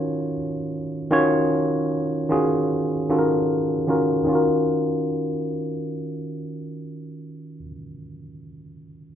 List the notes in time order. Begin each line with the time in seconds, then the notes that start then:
Already playing: D#3 C#4 F4 F#4 C#5
1.11 D#3 C#4 F4 F#4 C#5
2.29 D#3 C#4 F4 F#4 G#4
3.09 D#3 C#4 F4 F#4 A4
3.19 A#4
3.88 D#3 C#4 F4 F#4 A#4
4.24 D#3 C#4
4.29 F4 F#4
4.35 A#4